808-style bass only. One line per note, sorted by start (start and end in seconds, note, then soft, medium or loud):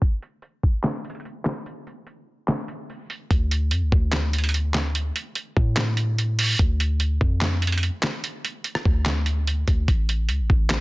3.31 3.73 D2 loud
3.72 3.83 F2 loud
3.82 3.92 D2 loud
3.92 5.11 D2 loud
5.57 6.55 A2 loud
6.59 7.18 D2 loud
7.21 7.90 F2 loud
8.85 9.64 D2 loud
9.68 9.87 D2 loud
9.88 10.31 A1 loud
10.29 10.41 C#2 loud
10.40 10.49 A1 loud
10.50 10.80 A1 loud